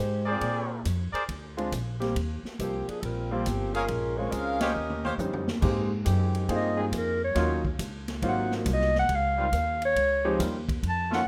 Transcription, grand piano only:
0, 0, Header, 1, 2, 480
1, 0, Start_track
1, 0, Key_signature, -3, "major"
1, 0, Tempo, 433526
1, 458, Time_signature, 4, 2, 24, 8
1, 6224, Key_signature, -4, "major"
1, 12486, End_track
2, 0, Start_track
2, 0, Title_t, "Grand piano"
2, 0, Program_c, 0, 0
2, 1740, Note_on_c, 0, 56, 67
2, 1741, Note_on_c, 0, 65, 71
2, 1742, Note_on_c, 0, 60, 62
2, 1749, Note_on_c, 0, 62, 61
2, 1884, Note_off_c, 0, 56, 0
2, 1884, Note_off_c, 0, 60, 0
2, 1884, Note_off_c, 0, 65, 0
2, 1888, Note_off_c, 0, 62, 0
2, 2211, Note_on_c, 0, 55, 53
2, 2218, Note_on_c, 0, 67, 64
2, 2220, Note_on_c, 0, 58, 50
2, 2223, Note_on_c, 0, 60, 51
2, 2359, Note_off_c, 0, 55, 0
2, 2363, Note_off_c, 0, 67, 0
2, 2364, Note_off_c, 0, 58, 0
2, 2365, Note_off_c, 0, 60, 0
2, 3668, Note_on_c, 0, 55, 72
2, 3668, Note_on_c, 0, 58, 61
2, 3674, Note_on_c, 0, 60, 63
2, 3677, Note_on_c, 0, 65, 73
2, 3809, Note_off_c, 0, 55, 0
2, 3809, Note_off_c, 0, 58, 0
2, 3811, Note_off_c, 0, 60, 0
2, 3813, Note_off_c, 0, 65, 0
2, 4629, Note_on_c, 0, 56, 57
2, 4629, Note_on_c, 0, 61, 47
2, 4635, Note_on_c, 0, 60, 46
2, 4639, Note_on_c, 0, 65, 57
2, 5234, Note_off_c, 0, 56, 0
2, 5234, Note_off_c, 0, 61, 0
2, 5237, Note_off_c, 0, 60, 0
2, 5239, Note_off_c, 0, 65, 0
2, 5742, Note_on_c, 0, 55, 51
2, 5743, Note_on_c, 0, 61, 49
2, 5744, Note_on_c, 0, 60, 47
2, 5752, Note_on_c, 0, 63, 60
2, 6033, Note_off_c, 0, 55, 0
2, 6033, Note_off_c, 0, 61, 0
2, 6034, Note_off_c, 0, 60, 0
2, 6038, Note_off_c, 0, 63, 0
2, 6213, Note_on_c, 0, 56, 60
2, 6218, Note_on_c, 0, 58, 55
2, 6224, Note_on_c, 0, 60, 56
2, 6225, Note_on_c, 0, 63, 55
2, 6226, Note_on_c, 0, 67, 70
2, 6508, Note_off_c, 0, 56, 0
2, 6511, Note_off_c, 0, 58, 0
2, 6514, Note_off_c, 0, 60, 0
2, 6514, Note_off_c, 0, 63, 0
2, 6515, Note_off_c, 0, 67, 0
2, 7185, Note_on_c, 0, 68, 59
2, 7189, Note_on_c, 0, 58, 60
2, 7193, Note_on_c, 0, 60, 57
2, 7195, Note_on_c, 0, 63, 59
2, 7200, Note_on_c, 0, 65, 65
2, 7922, Note_off_c, 0, 68, 0
2, 7924, Note_off_c, 0, 58, 0
2, 7926, Note_off_c, 0, 60, 0
2, 7927, Note_off_c, 0, 63, 0
2, 7930, Note_off_c, 0, 65, 0
2, 8139, Note_on_c, 0, 54, 59
2, 8142, Note_on_c, 0, 58, 57
2, 8145, Note_on_c, 0, 63, 62
2, 8146, Note_on_c, 0, 61, 62
2, 8148, Note_on_c, 0, 65, 67
2, 8431, Note_off_c, 0, 54, 0
2, 8432, Note_off_c, 0, 58, 0
2, 8434, Note_off_c, 0, 63, 0
2, 8435, Note_off_c, 0, 61, 0
2, 8436, Note_off_c, 0, 65, 0
2, 9102, Note_on_c, 0, 60, 53
2, 9107, Note_on_c, 0, 58, 56
2, 9108, Note_on_c, 0, 54, 60
2, 9109, Note_on_c, 0, 63, 54
2, 9111, Note_on_c, 0, 65, 64
2, 9840, Note_off_c, 0, 60, 0
2, 9843, Note_off_c, 0, 54, 0
2, 9843, Note_off_c, 0, 58, 0
2, 9844, Note_off_c, 0, 63, 0
2, 9844, Note_off_c, 0, 65, 0
2, 11345, Note_on_c, 0, 56, 71
2, 11347, Note_on_c, 0, 67, 80
2, 11348, Note_on_c, 0, 63, 71
2, 11350, Note_on_c, 0, 53, 79
2, 11352, Note_on_c, 0, 60, 70
2, 11487, Note_off_c, 0, 56, 0
2, 11488, Note_off_c, 0, 67, 0
2, 11489, Note_off_c, 0, 63, 0
2, 11490, Note_off_c, 0, 53, 0
2, 11490, Note_off_c, 0, 60, 0
2, 12486, End_track
0, 0, End_of_file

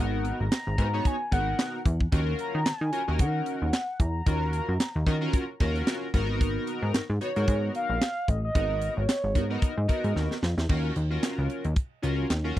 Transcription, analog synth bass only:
0, 0, Header, 1, 2, 480
1, 0, Start_track
1, 0, Key_signature, -6, "minor"
1, 0, Tempo, 535714
1, 1903, Time_signature, 4, 2, 24, 8
1, 11283, End_track
2, 0, Start_track
2, 0, Title_t, "Analog synth bass"
2, 0, Program_c, 0, 38
2, 0, Note_on_c, 0, 32, 119
2, 289, Note_off_c, 0, 32, 0
2, 360, Note_on_c, 0, 32, 88
2, 445, Note_off_c, 0, 32, 0
2, 601, Note_on_c, 0, 32, 105
2, 686, Note_off_c, 0, 32, 0
2, 702, Note_on_c, 0, 44, 99
2, 899, Note_off_c, 0, 44, 0
2, 1185, Note_on_c, 0, 32, 80
2, 1381, Note_off_c, 0, 32, 0
2, 1663, Note_on_c, 0, 40, 93
2, 1859, Note_off_c, 0, 40, 0
2, 1904, Note_on_c, 0, 39, 120
2, 2100, Note_off_c, 0, 39, 0
2, 2282, Note_on_c, 0, 51, 98
2, 2367, Note_off_c, 0, 51, 0
2, 2384, Note_on_c, 0, 51, 46
2, 2437, Note_off_c, 0, 51, 0
2, 2519, Note_on_c, 0, 51, 90
2, 2605, Note_off_c, 0, 51, 0
2, 2762, Note_on_c, 0, 39, 91
2, 2862, Note_on_c, 0, 51, 106
2, 2875, Note_off_c, 0, 39, 0
2, 3059, Note_off_c, 0, 51, 0
2, 3242, Note_on_c, 0, 39, 86
2, 3327, Note_off_c, 0, 39, 0
2, 3581, Note_on_c, 0, 40, 89
2, 3778, Note_off_c, 0, 40, 0
2, 3820, Note_on_c, 0, 39, 105
2, 4128, Note_off_c, 0, 39, 0
2, 4198, Note_on_c, 0, 42, 91
2, 4284, Note_off_c, 0, 42, 0
2, 4440, Note_on_c, 0, 39, 99
2, 4525, Note_off_c, 0, 39, 0
2, 4539, Note_on_c, 0, 51, 106
2, 4737, Note_off_c, 0, 51, 0
2, 5022, Note_on_c, 0, 39, 107
2, 5219, Note_off_c, 0, 39, 0
2, 5500, Note_on_c, 0, 32, 93
2, 5894, Note_off_c, 0, 32, 0
2, 6115, Note_on_c, 0, 44, 98
2, 6202, Note_off_c, 0, 44, 0
2, 6223, Note_on_c, 0, 44, 46
2, 6277, Note_off_c, 0, 44, 0
2, 6358, Note_on_c, 0, 44, 95
2, 6444, Note_off_c, 0, 44, 0
2, 6599, Note_on_c, 0, 44, 93
2, 6685, Note_off_c, 0, 44, 0
2, 6702, Note_on_c, 0, 44, 103
2, 6899, Note_off_c, 0, 44, 0
2, 7075, Note_on_c, 0, 34, 84
2, 7162, Note_off_c, 0, 34, 0
2, 7422, Note_on_c, 0, 33, 90
2, 7619, Note_off_c, 0, 33, 0
2, 7662, Note_on_c, 0, 32, 104
2, 7969, Note_off_c, 0, 32, 0
2, 8038, Note_on_c, 0, 32, 91
2, 8124, Note_off_c, 0, 32, 0
2, 8278, Note_on_c, 0, 32, 92
2, 8381, Note_on_c, 0, 44, 100
2, 8394, Note_off_c, 0, 32, 0
2, 8578, Note_off_c, 0, 44, 0
2, 8759, Note_on_c, 0, 44, 94
2, 8845, Note_off_c, 0, 44, 0
2, 8998, Note_on_c, 0, 44, 95
2, 9084, Note_off_c, 0, 44, 0
2, 9106, Note_on_c, 0, 39, 97
2, 9215, Note_off_c, 0, 39, 0
2, 9343, Note_on_c, 0, 41, 96
2, 9453, Note_off_c, 0, 41, 0
2, 9476, Note_on_c, 0, 40, 95
2, 9563, Note_off_c, 0, 40, 0
2, 9583, Note_on_c, 0, 39, 112
2, 9780, Note_off_c, 0, 39, 0
2, 9822, Note_on_c, 0, 39, 96
2, 10019, Note_off_c, 0, 39, 0
2, 10199, Note_on_c, 0, 37, 99
2, 10285, Note_off_c, 0, 37, 0
2, 10437, Note_on_c, 0, 39, 97
2, 10523, Note_off_c, 0, 39, 0
2, 10782, Note_on_c, 0, 37, 91
2, 10979, Note_off_c, 0, 37, 0
2, 11022, Note_on_c, 0, 39, 92
2, 11219, Note_off_c, 0, 39, 0
2, 11283, End_track
0, 0, End_of_file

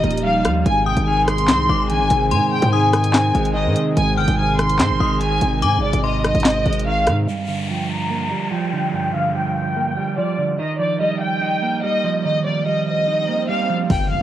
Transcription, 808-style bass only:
0, 0, Header, 1, 2, 480
1, 0, Start_track
1, 0, Tempo, 413793
1, 763, Time_signature, 4, 2, 24, 8
1, 16498, End_track
2, 0, Start_track
2, 0, Title_t, "808-style bass"
2, 0, Program_c, 0, 38
2, 44, Note_on_c, 0, 27, 108
2, 524, Note_on_c, 0, 39, 100
2, 542, Note_off_c, 0, 27, 0
2, 752, Note_off_c, 0, 39, 0
2, 764, Note_on_c, 0, 32, 111
2, 1110, Note_off_c, 0, 32, 0
2, 1124, Note_on_c, 0, 32, 103
2, 1724, Note_on_c, 0, 36, 97
2, 1741, Note_off_c, 0, 32, 0
2, 1952, Note_off_c, 0, 36, 0
2, 1964, Note_on_c, 0, 32, 112
2, 2205, Note_on_c, 0, 34, 96
2, 2222, Note_off_c, 0, 32, 0
2, 2324, Note_on_c, 0, 32, 103
2, 2341, Note_off_c, 0, 34, 0
2, 2438, Note_off_c, 0, 32, 0
2, 2444, Note_on_c, 0, 32, 112
2, 2683, Note_on_c, 0, 44, 99
2, 2701, Note_off_c, 0, 32, 0
2, 2798, Note_off_c, 0, 44, 0
2, 3044, Note_on_c, 0, 44, 103
2, 3850, Note_off_c, 0, 44, 0
2, 3883, Note_on_c, 0, 32, 112
2, 4244, Note_on_c, 0, 44, 103
2, 4261, Note_off_c, 0, 32, 0
2, 4358, Note_off_c, 0, 44, 0
2, 4604, Note_on_c, 0, 32, 105
2, 4843, Note_on_c, 0, 31, 107
2, 4861, Note_off_c, 0, 32, 0
2, 4958, Note_off_c, 0, 31, 0
2, 4964, Note_on_c, 0, 32, 110
2, 5563, Note_on_c, 0, 44, 96
2, 5581, Note_off_c, 0, 32, 0
2, 5683, Note_on_c, 0, 32, 99
2, 5701, Note_off_c, 0, 44, 0
2, 5798, Note_off_c, 0, 32, 0
2, 5804, Note_on_c, 0, 32, 107
2, 6265, Note_off_c, 0, 32, 0
2, 6284, Note_on_c, 0, 32, 108
2, 6523, Note_on_c, 0, 44, 94
2, 6541, Note_off_c, 0, 32, 0
2, 6703, Note_on_c, 0, 32, 99
2, 6720, Note_off_c, 0, 44, 0
2, 6874, Note_off_c, 0, 32, 0
2, 6883, Note_on_c, 0, 32, 99
2, 7344, Note_off_c, 0, 32, 0
2, 7363, Note_on_c, 0, 32, 104
2, 7709, Note_off_c, 0, 32, 0
2, 7723, Note_on_c, 0, 32, 109
2, 8203, Note_on_c, 0, 44, 99
2, 8221, Note_off_c, 0, 32, 0
2, 8432, Note_off_c, 0, 44, 0
2, 16124, Note_on_c, 0, 31, 109
2, 16469, Note_off_c, 0, 31, 0
2, 16498, End_track
0, 0, End_of_file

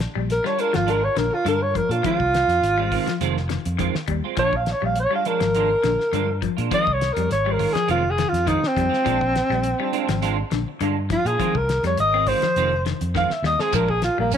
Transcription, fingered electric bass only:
0, 0, Header, 1, 3, 480
1, 0, Start_track
1, 0, Tempo, 584795
1, 1677, Time_signature, 4, 2, 24, 8
1, 11799, End_track
2, 0, Start_track
2, 0, Title_t, "Fingered electric bass"
2, 0, Program_c, 0, 33
2, 130, Note_on_c, 0, 34, 82
2, 315, Note_off_c, 0, 34, 0
2, 616, Note_on_c, 0, 32, 88
2, 885, Note_off_c, 0, 32, 0
2, 956, Note_on_c, 0, 34, 82
2, 1055, Note_off_c, 0, 34, 0
2, 1192, Note_on_c, 0, 43, 86
2, 1478, Note_off_c, 0, 43, 0
2, 1552, Note_on_c, 0, 46, 83
2, 1644, Note_off_c, 0, 46, 0
2, 1807, Note_on_c, 0, 36, 82
2, 1991, Note_off_c, 0, 36, 0
2, 2033, Note_on_c, 0, 41, 80
2, 2124, Note_off_c, 0, 41, 0
2, 2149, Note_on_c, 0, 32, 85
2, 2435, Note_off_c, 0, 32, 0
2, 2634, Note_on_c, 0, 29, 99
2, 2917, Note_off_c, 0, 29, 0
2, 3003, Note_on_c, 0, 41, 96
2, 3187, Note_off_c, 0, 41, 0
2, 3350, Note_on_c, 0, 39, 81
2, 3449, Note_off_c, 0, 39, 0
2, 3594, Note_on_c, 0, 34, 89
2, 3877, Note_off_c, 0, 34, 0
2, 3960, Note_on_c, 0, 34, 81
2, 4145, Note_off_c, 0, 34, 0
2, 4438, Note_on_c, 0, 32, 78
2, 4711, Note_off_c, 0, 32, 0
2, 4793, Note_on_c, 0, 34, 87
2, 4890, Note_off_c, 0, 34, 0
2, 5028, Note_on_c, 0, 43, 81
2, 5313, Note_off_c, 0, 43, 0
2, 5402, Note_on_c, 0, 46, 84
2, 5488, Note_off_c, 0, 46, 0
2, 5643, Note_on_c, 0, 36, 80
2, 5827, Note_off_c, 0, 36, 0
2, 5882, Note_on_c, 0, 41, 82
2, 5968, Note_off_c, 0, 41, 0
2, 5993, Note_on_c, 0, 32, 91
2, 6276, Note_off_c, 0, 32, 0
2, 6474, Note_on_c, 0, 29, 107
2, 6757, Note_off_c, 0, 29, 0
2, 6834, Note_on_c, 0, 41, 94
2, 7021, Note_off_c, 0, 41, 0
2, 7196, Note_on_c, 0, 41, 85
2, 7292, Note_off_c, 0, 41, 0
2, 7433, Note_on_c, 0, 34, 98
2, 7717, Note_off_c, 0, 34, 0
2, 7795, Note_on_c, 0, 34, 85
2, 7982, Note_off_c, 0, 34, 0
2, 8280, Note_on_c, 0, 32, 84
2, 8553, Note_off_c, 0, 32, 0
2, 8631, Note_on_c, 0, 34, 82
2, 8730, Note_off_c, 0, 34, 0
2, 8869, Note_on_c, 0, 43, 83
2, 9155, Note_off_c, 0, 43, 0
2, 9233, Note_on_c, 0, 46, 87
2, 9323, Note_off_c, 0, 46, 0
2, 9480, Note_on_c, 0, 36, 86
2, 9667, Note_off_c, 0, 36, 0
2, 9713, Note_on_c, 0, 41, 86
2, 9804, Note_off_c, 0, 41, 0
2, 9833, Note_on_c, 0, 32, 84
2, 10118, Note_off_c, 0, 32, 0
2, 10311, Note_on_c, 0, 29, 101
2, 10598, Note_off_c, 0, 29, 0
2, 10681, Note_on_c, 0, 41, 93
2, 10868, Note_off_c, 0, 41, 0
2, 11019, Note_on_c, 0, 39, 84
2, 11124, Note_off_c, 0, 39, 0
2, 11269, Note_on_c, 0, 34, 93
2, 11557, Note_off_c, 0, 34, 0
2, 11643, Note_on_c, 0, 34, 85
2, 11799, Note_off_c, 0, 34, 0
2, 11799, End_track
3, 0, Start_track
3, 0, Title_t, "Muted fingered electric bass strokes"
3, 2512, Note_on_c, 9, 29, 34
3, 2594, Note_off_c, 9, 29, 0
3, 3239, Note_on_c, 9, 29, 37
3, 3321, Note_off_c, 9, 29, 0
3, 6357, Note_on_c, 9, 29, 37
3, 6439, Note_off_c, 9, 29, 0
3, 7073, Note_on_c, 9, 29, 40
3, 7155, Note_off_c, 9, 29, 0
3, 10195, Note_on_c, 9, 29, 36
3, 10278, Note_off_c, 9, 29, 0
3, 10921, Note_on_c, 9, 29, 39
3, 11004, Note_off_c, 9, 29, 0
3, 11799, End_track
0, 0, End_of_file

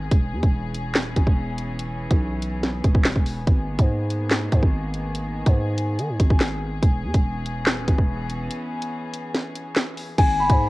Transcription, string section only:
0, 0, Header, 1, 2, 480
1, 0, Start_track
1, 0, Tempo, 419580
1, 130, Time_signature, 4, 2, 24, 8
1, 12233, End_track
2, 0, Start_track
2, 0, Title_t, "String section"
2, 0, Program_c, 0, 48
2, 0, Note_on_c, 0, 68, 86
2, 131, Note_on_c, 0, 52, 77
2, 132, Note_on_c, 0, 59, 72
2, 132, Note_on_c, 0, 61, 70
2, 3924, Note_off_c, 0, 68, 0
2, 3933, Note_off_c, 0, 52, 0
2, 3933, Note_off_c, 0, 61, 0
2, 3971, Note_on_c, 0, 51, 74
2, 3971, Note_on_c, 0, 58, 70
2, 3971, Note_on_c, 0, 68, 88
2, 7765, Note_off_c, 0, 59, 0
2, 7772, Note_off_c, 0, 58, 0
2, 7773, Note_off_c, 0, 51, 0
2, 7811, Note_on_c, 0, 52, 79
2, 7811, Note_on_c, 0, 59, 71
2, 7811, Note_on_c, 0, 61, 68
2, 11605, Note_off_c, 0, 68, 0
2, 11612, Note_off_c, 0, 52, 0
2, 11612, Note_off_c, 0, 59, 0
2, 11612, Note_off_c, 0, 61, 0
2, 11651, Note_on_c, 0, 51, 82
2, 11651, Note_on_c, 0, 59, 71
2, 11651, Note_on_c, 0, 68, 91
2, 11652, Note_on_c, 0, 58, 72
2, 12233, Note_off_c, 0, 51, 0
2, 12233, Note_off_c, 0, 58, 0
2, 12233, Note_off_c, 0, 59, 0
2, 12233, Note_off_c, 0, 68, 0
2, 12233, End_track
0, 0, End_of_file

